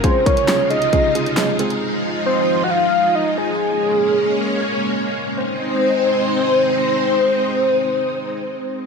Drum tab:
HH |x-xxx-xxx-xxx-xx|----------------|----------------|----------------|
CP |----x-------x---|----------------|----------------|----------------|
SD |----o-------o---|----------------|----------------|----------------|
BD |o-o-----o-------|----------------|----------------|----------------|

HH |----------------|
CP |----------------|
SD |----------------|
BD |----------------|